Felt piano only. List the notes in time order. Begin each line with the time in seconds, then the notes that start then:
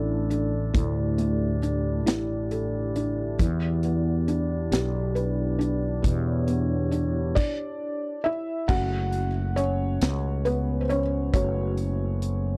Already playing: D3 A3 D4 E4 A4
0.30 D4
0.74 A2
1.18 A3
1.63 D4
2.06 E4
2.51 A4
2.96 D4
3.40 E3
3.85 B3
4.28 D4
4.72 G4
5.15 B4
5.59 D4
6.02 B2
6.47 B3
6.91 D4
7.35 D4 D5
8.24 E4 E5
8.68 A3 C#4 F#4 F#5
9.56 C#4 C#5
10.45 B3 B4
10.81 C5
10.89 C#4 C#5
11.33 A3 C#4 F#4 C#5